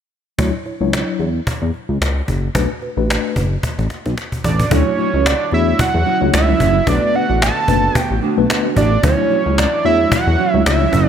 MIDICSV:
0, 0, Header, 1, 8, 480
1, 0, Start_track
1, 0, Tempo, 540541
1, 344, Time_signature, 4, 2, 24, 8
1, 9846, End_track
2, 0, Start_track
2, 0, Title_t, "Analog synth lead"
2, 0, Program_c, 0, 81
2, 3950, Note_on_c, 0, 74, 80
2, 4193, Note_on_c, 0, 73, 94
2, 4207, Note_off_c, 0, 74, 0
2, 4677, Note_on_c, 0, 74, 97
2, 4690, Note_off_c, 0, 73, 0
2, 4910, Note_off_c, 0, 74, 0
2, 4919, Note_on_c, 0, 76, 91
2, 5135, Note_off_c, 0, 76, 0
2, 5155, Note_on_c, 0, 78, 101
2, 5596, Note_off_c, 0, 78, 0
2, 5633, Note_on_c, 0, 76, 96
2, 6114, Note_on_c, 0, 74, 110
2, 6127, Note_off_c, 0, 76, 0
2, 6353, Note_on_c, 0, 78, 101
2, 6367, Note_off_c, 0, 74, 0
2, 6588, Note_off_c, 0, 78, 0
2, 6595, Note_on_c, 0, 81, 100
2, 7092, Note_off_c, 0, 81, 0
2, 7092, Note_on_c, 0, 79, 100
2, 7274, Note_off_c, 0, 79, 0
2, 7789, Note_on_c, 0, 74, 81
2, 8010, Note_off_c, 0, 74, 0
2, 8027, Note_on_c, 0, 73, 91
2, 8510, Note_on_c, 0, 74, 91
2, 8523, Note_off_c, 0, 73, 0
2, 8746, Note_off_c, 0, 74, 0
2, 8751, Note_on_c, 0, 76, 98
2, 8970, Note_off_c, 0, 76, 0
2, 8993, Note_on_c, 0, 78, 101
2, 9435, Note_off_c, 0, 78, 0
2, 9474, Note_on_c, 0, 76, 91
2, 9846, Note_off_c, 0, 76, 0
2, 9846, End_track
3, 0, Start_track
3, 0, Title_t, "Tine electric piano"
3, 0, Program_c, 1, 4
3, 340, Note_on_c, 1, 54, 75
3, 343, Note_on_c, 1, 62, 70
3, 345, Note_on_c, 1, 64, 70
3, 349, Note_on_c, 1, 73, 85
3, 461, Note_off_c, 1, 54, 0
3, 463, Note_off_c, 1, 62, 0
3, 463, Note_off_c, 1, 64, 0
3, 465, Note_off_c, 1, 73, 0
3, 582, Note_on_c, 1, 64, 81
3, 589, Note_on_c, 1, 73, 93
3, 642, Note_off_c, 1, 64, 0
3, 646, Note_off_c, 1, 73, 0
3, 716, Note_on_c, 1, 54, 72
3, 719, Note_on_c, 1, 62, 72
3, 721, Note_on_c, 1, 64, 73
3, 722, Note_on_c, 1, 73, 84
3, 1136, Note_off_c, 1, 54, 0
3, 1138, Note_off_c, 1, 62, 0
3, 1139, Note_off_c, 1, 64, 0
3, 1140, Note_off_c, 1, 73, 0
3, 2262, Note_on_c, 1, 57, 75
3, 2262, Note_on_c, 1, 62, 67
3, 2264, Note_on_c, 1, 66, 70
3, 2267, Note_on_c, 1, 71, 85
3, 2382, Note_off_c, 1, 57, 0
3, 2382, Note_off_c, 1, 62, 0
3, 2383, Note_off_c, 1, 66, 0
3, 2384, Note_off_c, 1, 71, 0
3, 2500, Note_on_c, 1, 66, 83
3, 2507, Note_on_c, 1, 71, 93
3, 2561, Note_off_c, 1, 66, 0
3, 2565, Note_off_c, 1, 71, 0
3, 2634, Note_on_c, 1, 57, 81
3, 2638, Note_on_c, 1, 62, 68
3, 2641, Note_on_c, 1, 66, 74
3, 2643, Note_on_c, 1, 71, 83
3, 3056, Note_off_c, 1, 57, 0
3, 3057, Note_off_c, 1, 62, 0
3, 3059, Note_off_c, 1, 66, 0
3, 3060, Note_off_c, 1, 71, 0
3, 4181, Note_on_c, 1, 57, 75
3, 4184, Note_on_c, 1, 62, 62
3, 4184, Note_on_c, 1, 64, 68
3, 4186, Note_on_c, 1, 66, 66
3, 4189, Note_on_c, 1, 73, 83
3, 4511, Note_off_c, 1, 57, 0
3, 4513, Note_off_c, 1, 62, 0
3, 4513, Note_off_c, 1, 64, 0
3, 4514, Note_off_c, 1, 66, 0
3, 4515, Note_off_c, 1, 73, 0
3, 4898, Note_on_c, 1, 62, 69
3, 4899, Note_on_c, 1, 57, 75
3, 4901, Note_on_c, 1, 64, 73
3, 4903, Note_on_c, 1, 66, 70
3, 4906, Note_on_c, 1, 73, 87
3, 5170, Note_off_c, 1, 62, 0
3, 5171, Note_off_c, 1, 57, 0
3, 5172, Note_off_c, 1, 64, 0
3, 5173, Note_off_c, 1, 66, 0
3, 5174, Note_off_c, 1, 73, 0
3, 5513, Note_on_c, 1, 57, 69
3, 5515, Note_on_c, 1, 62, 64
3, 5516, Note_on_c, 1, 64, 70
3, 5517, Note_on_c, 1, 66, 70
3, 5519, Note_on_c, 1, 73, 77
3, 5778, Note_off_c, 1, 57, 0
3, 5780, Note_off_c, 1, 62, 0
3, 5780, Note_off_c, 1, 64, 0
3, 5780, Note_off_c, 1, 66, 0
3, 5781, Note_off_c, 1, 73, 0
3, 6099, Note_on_c, 1, 57, 71
3, 6100, Note_on_c, 1, 59, 67
3, 6103, Note_on_c, 1, 62, 68
3, 6104, Note_on_c, 1, 66, 69
3, 6105, Note_on_c, 1, 71, 80
3, 6430, Note_off_c, 1, 57, 0
3, 6431, Note_off_c, 1, 59, 0
3, 6432, Note_off_c, 1, 62, 0
3, 6433, Note_off_c, 1, 66, 0
3, 6433, Note_off_c, 1, 71, 0
3, 6818, Note_on_c, 1, 57, 77
3, 6820, Note_on_c, 1, 59, 76
3, 6822, Note_on_c, 1, 62, 70
3, 6823, Note_on_c, 1, 66, 70
3, 6826, Note_on_c, 1, 71, 81
3, 7090, Note_off_c, 1, 57, 0
3, 7091, Note_off_c, 1, 59, 0
3, 7092, Note_off_c, 1, 62, 0
3, 7093, Note_off_c, 1, 66, 0
3, 7094, Note_off_c, 1, 71, 0
3, 7433, Note_on_c, 1, 57, 87
3, 7435, Note_on_c, 1, 59, 80
3, 7438, Note_on_c, 1, 62, 80
3, 7439, Note_on_c, 1, 66, 82
3, 7440, Note_on_c, 1, 71, 96
3, 7699, Note_off_c, 1, 57, 0
3, 7700, Note_off_c, 1, 59, 0
3, 7701, Note_off_c, 1, 62, 0
3, 7701, Note_off_c, 1, 66, 0
3, 7702, Note_off_c, 1, 71, 0
3, 8018, Note_on_c, 1, 57, 79
3, 8019, Note_on_c, 1, 62, 71
3, 8021, Note_on_c, 1, 64, 65
3, 8024, Note_on_c, 1, 66, 69
3, 8025, Note_on_c, 1, 73, 77
3, 8350, Note_off_c, 1, 57, 0
3, 8350, Note_off_c, 1, 62, 0
3, 8352, Note_off_c, 1, 64, 0
3, 8353, Note_off_c, 1, 66, 0
3, 8353, Note_off_c, 1, 73, 0
3, 8743, Note_on_c, 1, 57, 73
3, 8744, Note_on_c, 1, 62, 71
3, 8744, Note_on_c, 1, 64, 74
3, 8746, Note_on_c, 1, 66, 75
3, 8750, Note_on_c, 1, 73, 85
3, 9013, Note_off_c, 1, 57, 0
3, 9013, Note_off_c, 1, 62, 0
3, 9013, Note_off_c, 1, 64, 0
3, 9014, Note_off_c, 1, 66, 0
3, 9016, Note_off_c, 1, 73, 0
3, 9355, Note_on_c, 1, 57, 74
3, 9359, Note_on_c, 1, 62, 64
3, 9359, Note_on_c, 1, 64, 68
3, 9360, Note_on_c, 1, 66, 69
3, 9363, Note_on_c, 1, 73, 86
3, 9619, Note_off_c, 1, 57, 0
3, 9621, Note_off_c, 1, 62, 0
3, 9621, Note_off_c, 1, 64, 0
3, 9622, Note_off_c, 1, 66, 0
3, 9624, Note_off_c, 1, 73, 0
3, 9846, End_track
4, 0, Start_track
4, 0, Title_t, "Clean electric guitar"
4, 0, Program_c, 2, 27
4, 4175, Note_on_c, 2, 54, 86
4, 4184, Note_on_c, 2, 61, 97
4, 4192, Note_on_c, 2, 64, 92
4, 4299, Note_off_c, 2, 64, 0
4, 4312, Note_off_c, 2, 61, 0
4, 4363, Note_off_c, 2, 54, 0
4, 4416, Note_on_c, 2, 54, 67
4, 4424, Note_on_c, 2, 61, 77
4, 4433, Note_on_c, 2, 64, 80
4, 4540, Note_off_c, 2, 64, 0
4, 4549, Note_off_c, 2, 61, 0
4, 4550, Note_on_c, 2, 64, 65
4, 4557, Note_off_c, 2, 54, 0
4, 4559, Note_on_c, 2, 61, 60
4, 4568, Note_on_c, 2, 54, 53
4, 4644, Note_off_c, 2, 54, 0
4, 4651, Note_off_c, 2, 61, 0
4, 4656, Note_off_c, 2, 64, 0
4, 5372, Note_on_c, 2, 54, 81
4, 5382, Note_on_c, 2, 61, 89
4, 5389, Note_on_c, 2, 64, 95
4, 5498, Note_off_c, 2, 64, 0
4, 5512, Note_off_c, 2, 61, 0
4, 5561, Note_off_c, 2, 54, 0
4, 5745, Note_on_c, 2, 64, 73
4, 5756, Note_on_c, 2, 61, 62
4, 5761, Note_on_c, 2, 54, 57
4, 5843, Note_off_c, 2, 54, 0
4, 5851, Note_off_c, 2, 61, 0
4, 5854, Note_on_c, 2, 54, 81
4, 5860, Note_off_c, 2, 64, 0
4, 5862, Note_on_c, 2, 61, 86
4, 5870, Note_on_c, 2, 64, 102
4, 5978, Note_off_c, 2, 64, 0
4, 5989, Note_off_c, 2, 61, 0
4, 6042, Note_off_c, 2, 54, 0
4, 6093, Note_on_c, 2, 57, 78
4, 6103, Note_on_c, 2, 62, 88
4, 6110, Note_on_c, 2, 66, 80
4, 6218, Note_off_c, 2, 66, 0
4, 6230, Note_off_c, 2, 62, 0
4, 6282, Note_off_c, 2, 57, 0
4, 6334, Note_on_c, 2, 57, 64
4, 6345, Note_on_c, 2, 62, 66
4, 6351, Note_on_c, 2, 66, 80
4, 6456, Note_off_c, 2, 66, 0
4, 6467, Note_off_c, 2, 62, 0
4, 6467, Note_on_c, 2, 66, 60
4, 6475, Note_off_c, 2, 57, 0
4, 6477, Note_on_c, 2, 62, 61
4, 6485, Note_on_c, 2, 57, 56
4, 6563, Note_off_c, 2, 57, 0
4, 6571, Note_off_c, 2, 62, 0
4, 6576, Note_off_c, 2, 66, 0
4, 7291, Note_on_c, 2, 57, 94
4, 7302, Note_on_c, 2, 62, 96
4, 7308, Note_on_c, 2, 66, 88
4, 7420, Note_off_c, 2, 66, 0
4, 7433, Note_off_c, 2, 62, 0
4, 7481, Note_off_c, 2, 57, 0
4, 7666, Note_on_c, 2, 66, 72
4, 7676, Note_on_c, 2, 62, 69
4, 7685, Note_on_c, 2, 57, 60
4, 7762, Note_off_c, 2, 57, 0
4, 7773, Note_off_c, 2, 62, 0
4, 7773, Note_on_c, 2, 57, 83
4, 7779, Note_off_c, 2, 66, 0
4, 7783, Note_on_c, 2, 62, 92
4, 7790, Note_on_c, 2, 66, 96
4, 7899, Note_off_c, 2, 66, 0
4, 7912, Note_off_c, 2, 62, 0
4, 7962, Note_off_c, 2, 57, 0
4, 8014, Note_on_c, 2, 54, 91
4, 8025, Note_on_c, 2, 61, 92
4, 8032, Note_on_c, 2, 64, 105
4, 8138, Note_off_c, 2, 64, 0
4, 8150, Note_off_c, 2, 61, 0
4, 8203, Note_off_c, 2, 54, 0
4, 8253, Note_on_c, 2, 54, 72
4, 8264, Note_on_c, 2, 61, 81
4, 8270, Note_on_c, 2, 64, 86
4, 8379, Note_off_c, 2, 64, 0
4, 8388, Note_off_c, 2, 61, 0
4, 8390, Note_on_c, 2, 64, 60
4, 8395, Note_off_c, 2, 54, 0
4, 8398, Note_on_c, 2, 61, 56
4, 8406, Note_on_c, 2, 54, 59
4, 8486, Note_off_c, 2, 54, 0
4, 8494, Note_off_c, 2, 61, 0
4, 8499, Note_off_c, 2, 64, 0
4, 9214, Note_on_c, 2, 54, 85
4, 9224, Note_on_c, 2, 61, 79
4, 9232, Note_on_c, 2, 64, 94
4, 9341, Note_off_c, 2, 64, 0
4, 9352, Note_off_c, 2, 61, 0
4, 9402, Note_off_c, 2, 54, 0
4, 9591, Note_on_c, 2, 64, 64
4, 9600, Note_on_c, 2, 61, 54
4, 9608, Note_on_c, 2, 54, 48
4, 9683, Note_off_c, 2, 54, 0
4, 9691, Note_off_c, 2, 61, 0
4, 9693, Note_on_c, 2, 54, 85
4, 9701, Note_off_c, 2, 64, 0
4, 9702, Note_on_c, 2, 61, 93
4, 9712, Note_on_c, 2, 64, 107
4, 9819, Note_off_c, 2, 64, 0
4, 9832, Note_off_c, 2, 61, 0
4, 9846, Note_off_c, 2, 54, 0
4, 9846, End_track
5, 0, Start_track
5, 0, Title_t, "Analog synth pad"
5, 0, Program_c, 3, 89
5, 4174, Note_on_c, 3, 50, 79
5, 4175, Note_on_c, 3, 73, 67
5, 4176, Note_on_c, 3, 54, 68
5, 4176, Note_on_c, 3, 64, 84
5, 6080, Note_off_c, 3, 54, 0
5, 6080, Note_off_c, 3, 73, 0
5, 6081, Note_off_c, 3, 64, 0
5, 6101, Note_on_c, 3, 59, 71
5, 6103, Note_on_c, 3, 66, 83
5, 6104, Note_on_c, 3, 57, 73
5, 7983, Note_off_c, 3, 50, 0
5, 8003, Note_off_c, 3, 59, 0
5, 8004, Note_off_c, 3, 66, 0
5, 8005, Note_off_c, 3, 57, 0
5, 8022, Note_on_c, 3, 54, 72
5, 8022, Note_on_c, 3, 73, 73
5, 8023, Note_on_c, 3, 52, 78
5, 8024, Note_on_c, 3, 64, 85
5, 9846, Note_off_c, 3, 52, 0
5, 9846, Note_off_c, 3, 54, 0
5, 9846, Note_off_c, 3, 64, 0
5, 9846, Note_off_c, 3, 73, 0
5, 9846, End_track
6, 0, Start_track
6, 0, Title_t, "Analog synth bass"
6, 0, Program_c, 4, 38
6, 344, Note_on_c, 4, 38, 99
6, 448, Note_off_c, 4, 38, 0
6, 717, Note_on_c, 4, 37, 77
6, 903, Note_off_c, 4, 37, 0
6, 1061, Note_on_c, 4, 40, 77
6, 1247, Note_off_c, 4, 40, 0
6, 1437, Note_on_c, 4, 40, 82
6, 1519, Note_off_c, 4, 40, 0
6, 1678, Note_on_c, 4, 37, 83
6, 1759, Note_off_c, 4, 37, 0
6, 1785, Note_on_c, 4, 37, 93
6, 1970, Note_off_c, 4, 37, 0
6, 2025, Note_on_c, 4, 30, 90
6, 2210, Note_off_c, 4, 30, 0
6, 2265, Note_on_c, 4, 35, 107
6, 2368, Note_off_c, 4, 35, 0
6, 2638, Note_on_c, 4, 33, 88
6, 2824, Note_off_c, 4, 33, 0
6, 2985, Note_on_c, 4, 30, 88
6, 3170, Note_off_c, 4, 30, 0
6, 3362, Note_on_c, 4, 33, 88
6, 3442, Note_off_c, 4, 33, 0
6, 3605, Note_on_c, 4, 35, 89
6, 3684, Note_off_c, 4, 35, 0
6, 3948, Note_on_c, 4, 33, 86
6, 4132, Note_off_c, 4, 33, 0
6, 4185, Note_on_c, 4, 38, 105
6, 4288, Note_off_c, 4, 38, 0
6, 4563, Note_on_c, 4, 37, 86
6, 4746, Note_off_c, 4, 37, 0
6, 4904, Note_on_c, 4, 40, 84
6, 5090, Note_off_c, 4, 40, 0
6, 5279, Note_on_c, 4, 40, 96
6, 5360, Note_off_c, 4, 40, 0
6, 5520, Note_on_c, 4, 37, 86
6, 5601, Note_off_c, 4, 37, 0
6, 5626, Note_on_c, 4, 37, 99
6, 5811, Note_off_c, 4, 37, 0
6, 5864, Note_on_c, 4, 30, 96
6, 6049, Note_off_c, 4, 30, 0
6, 6101, Note_on_c, 4, 35, 115
6, 6206, Note_off_c, 4, 35, 0
6, 6479, Note_on_c, 4, 33, 95
6, 6664, Note_off_c, 4, 33, 0
6, 6821, Note_on_c, 4, 30, 88
6, 7007, Note_off_c, 4, 30, 0
6, 7198, Note_on_c, 4, 33, 92
6, 7280, Note_off_c, 4, 33, 0
6, 7439, Note_on_c, 4, 35, 92
6, 7520, Note_off_c, 4, 35, 0
6, 7785, Note_on_c, 4, 33, 92
6, 7970, Note_off_c, 4, 33, 0
6, 8023, Note_on_c, 4, 38, 106
6, 8127, Note_off_c, 4, 38, 0
6, 8401, Note_on_c, 4, 37, 85
6, 8585, Note_off_c, 4, 37, 0
6, 8746, Note_on_c, 4, 40, 90
6, 8931, Note_off_c, 4, 40, 0
6, 9121, Note_on_c, 4, 40, 87
6, 9201, Note_off_c, 4, 40, 0
6, 9362, Note_on_c, 4, 37, 84
6, 9442, Note_off_c, 4, 37, 0
6, 9467, Note_on_c, 4, 37, 93
6, 9651, Note_off_c, 4, 37, 0
6, 9704, Note_on_c, 4, 30, 98
6, 9846, Note_off_c, 4, 30, 0
6, 9846, End_track
7, 0, Start_track
7, 0, Title_t, "Cajon"
7, 343, Note_on_c, 9, 36, 109
7, 431, Note_off_c, 9, 36, 0
7, 583, Note_on_c, 9, 38, 36
7, 672, Note_off_c, 9, 38, 0
7, 829, Note_on_c, 9, 38, 112
7, 837, Note_off_c, 9, 38, 0
7, 837, Note_on_c, 9, 38, 85
7, 925, Note_off_c, 9, 38, 0
7, 1059, Note_on_c, 9, 38, 37
7, 1148, Note_off_c, 9, 38, 0
7, 1304, Note_on_c, 9, 36, 113
7, 1393, Note_off_c, 9, 36, 0
7, 1545, Note_on_c, 9, 38, 43
7, 1634, Note_off_c, 9, 38, 0
7, 1791, Note_on_c, 9, 38, 113
7, 1799, Note_off_c, 9, 38, 0
7, 1799, Note_on_c, 9, 38, 85
7, 1888, Note_off_c, 9, 38, 0
7, 2025, Note_on_c, 9, 36, 77
7, 2114, Note_off_c, 9, 36, 0
7, 2264, Note_on_c, 9, 36, 115
7, 2353, Note_off_c, 9, 36, 0
7, 2507, Note_on_c, 9, 38, 36
7, 2596, Note_off_c, 9, 38, 0
7, 2756, Note_on_c, 9, 38, 109
7, 2763, Note_off_c, 9, 38, 0
7, 2763, Note_on_c, 9, 38, 93
7, 2852, Note_off_c, 9, 38, 0
7, 2984, Note_on_c, 9, 36, 89
7, 3073, Note_off_c, 9, 36, 0
7, 3226, Note_on_c, 9, 36, 106
7, 3229, Note_on_c, 9, 38, 53
7, 3315, Note_off_c, 9, 36, 0
7, 3317, Note_off_c, 9, 38, 0
7, 3363, Note_on_c, 9, 38, 47
7, 3452, Note_off_c, 9, 38, 0
7, 3464, Note_on_c, 9, 38, 64
7, 3553, Note_off_c, 9, 38, 0
7, 3602, Note_on_c, 9, 38, 59
7, 3691, Note_off_c, 9, 38, 0
7, 3708, Note_on_c, 9, 38, 78
7, 3797, Note_off_c, 9, 38, 0
7, 3838, Note_on_c, 9, 36, 68
7, 3927, Note_off_c, 9, 36, 0
7, 3946, Note_on_c, 9, 36, 94
7, 4035, Note_off_c, 9, 36, 0
7, 4080, Note_on_c, 9, 36, 80
7, 4169, Note_off_c, 9, 36, 0
7, 4184, Note_on_c, 9, 36, 120
7, 4273, Note_off_c, 9, 36, 0
7, 4424, Note_on_c, 9, 38, 38
7, 4513, Note_off_c, 9, 38, 0
7, 4671, Note_on_c, 9, 38, 126
7, 4679, Note_off_c, 9, 38, 0
7, 4679, Note_on_c, 9, 38, 95
7, 4767, Note_off_c, 9, 38, 0
7, 4898, Note_on_c, 9, 38, 41
7, 4987, Note_off_c, 9, 38, 0
7, 5144, Note_on_c, 9, 36, 119
7, 5232, Note_off_c, 9, 36, 0
7, 5383, Note_on_c, 9, 38, 44
7, 5472, Note_off_c, 9, 38, 0
7, 5626, Note_on_c, 9, 38, 112
7, 5634, Note_off_c, 9, 38, 0
7, 5634, Note_on_c, 9, 38, 94
7, 5723, Note_off_c, 9, 38, 0
7, 5862, Note_on_c, 9, 36, 85
7, 5950, Note_off_c, 9, 36, 0
7, 6100, Note_on_c, 9, 36, 120
7, 6189, Note_off_c, 9, 36, 0
7, 6341, Note_on_c, 9, 38, 39
7, 6430, Note_off_c, 9, 38, 0
7, 6590, Note_on_c, 9, 38, 125
7, 6598, Note_off_c, 9, 38, 0
7, 6598, Note_on_c, 9, 38, 101
7, 6687, Note_off_c, 9, 38, 0
7, 6820, Note_on_c, 9, 36, 88
7, 6909, Note_off_c, 9, 36, 0
7, 7062, Note_on_c, 9, 36, 123
7, 7151, Note_off_c, 9, 36, 0
7, 7301, Note_on_c, 9, 38, 46
7, 7389, Note_off_c, 9, 38, 0
7, 7548, Note_on_c, 9, 38, 127
7, 7556, Note_off_c, 9, 38, 0
7, 7556, Note_on_c, 9, 38, 95
7, 7644, Note_off_c, 9, 38, 0
7, 7783, Note_on_c, 9, 36, 81
7, 7871, Note_off_c, 9, 36, 0
7, 8022, Note_on_c, 9, 36, 126
7, 8111, Note_off_c, 9, 36, 0
7, 8265, Note_on_c, 9, 38, 39
7, 8354, Note_off_c, 9, 38, 0
7, 8509, Note_on_c, 9, 38, 124
7, 8516, Note_off_c, 9, 38, 0
7, 8516, Note_on_c, 9, 38, 101
7, 8605, Note_off_c, 9, 38, 0
7, 8737, Note_on_c, 9, 38, 40
7, 8826, Note_off_c, 9, 38, 0
7, 8983, Note_on_c, 9, 36, 119
7, 9072, Note_off_c, 9, 36, 0
7, 9222, Note_on_c, 9, 38, 46
7, 9310, Note_off_c, 9, 38, 0
7, 9469, Note_on_c, 9, 38, 115
7, 9477, Note_off_c, 9, 38, 0
7, 9477, Note_on_c, 9, 38, 95
7, 9565, Note_off_c, 9, 38, 0
7, 9702, Note_on_c, 9, 36, 87
7, 9791, Note_off_c, 9, 36, 0
7, 9846, End_track
8, 0, Start_track
8, 0, Title_t, "Muted clean electric guitar strokes"
8, 4310, Note_on_c, 9, 29, 53
8, 4399, Note_off_c, 9, 29, 0
8, 4655, Note_on_c, 9, 29, 38
8, 4744, Note_off_c, 9, 29, 0
8, 4787, Note_on_c, 9, 29, 47
8, 4876, Note_off_c, 9, 29, 0
8, 5029, Note_on_c, 9, 29, 48
8, 5118, Note_off_c, 9, 29, 0
8, 5131, Note_on_c, 9, 29, 44
8, 5220, Note_off_c, 9, 29, 0
8, 5267, Note_on_c, 9, 29, 43
8, 5356, Note_off_c, 9, 29, 0
8, 5509, Note_on_c, 9, 29, 55
8, 5598, Note_off_c, 9, 29, 0
8, 5611, Note_on_c, 9, 29, 39
8, 5700, Note_off_c, 9, 29, 0
8, 5988, Note_on_c, 9, 29, 39
8, 6077, Note_off_c, 9, 29, 0
8, 6228, Note_on_c, 9, 29, 50
8, 6317, Note_off_c, 9, 29, 0
8, 6574, Note_on_c, 9, 29, 44
8, 6663, Note_off_c, 9, 29, 0
8, 6709, Note_on_c, 9, 29, 54
8, 6798, Note_off_c, 9, 29, 0
8, 6949, Note_on_c, 9, 29, 45
8, 7038, Note_off_c, 9, 29, 0
8, 7054, Note_on_c, 9, 29, 37
8, 7143, Note_off_c, 9, 29, 0
8, 7187, Note_on_c, 9, 29, 42
8, 7276, Note_off_c, 9, 29, 0
8, 7431, Note_on_c, 9, 29, 49
8, 7520, Note_off_c, 9, 29, 0
8, 7536, Note_on_c, 9, 29, 41
8, 7625, Note_off_c, 9, 29, 0
8, 7910, Note_on_c, 9, 29, 45
8, 7999, Note_off_c, 9, 29, 0
8, 8149, Note_on_c, 9, 29, 49
8, 8238, Note_off_c, 9, 29, 0
8, 8496, Note_on_c, 9, 29, 44
8, 8585, Note_off_c, 9, 29, 0
8, 8631, Note_on_c, 9, 29, 64
8, 8720, Note_off_c, 9, 29, 0
8, 8875, Note_on_c, 9, 29, 44
8, 8964, Note_off_c, 9, 29, 0
8, 8977, Note_on_c, 9, 29, 35
8, 9066, Note_off_c, 9, 29, 0
8, 9110, Note_on_c, 9, 29, 49
8, 9199, Note_off_c, 9, 29, 0
8, 9352, Note_on_c, 9, 29, 51
8, 9440, Note_off_c, 9, 29, 0
8, 9846, End_track
0, 0, End_of_file